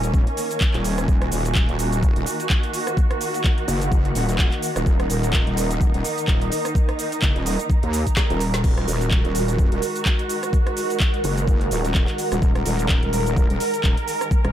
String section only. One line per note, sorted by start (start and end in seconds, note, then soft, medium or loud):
0.00 14.52 D#3 medium
0.00 8.60 A#3 medium
0.00 1.07 C#4 medium
1.08 4.85 F#4 loud
4.86 8.63 D#4 medium
8.64 14.52 G#3 medium
8.64 12.41 F#4 loud
12.42 14.52 A#4 loud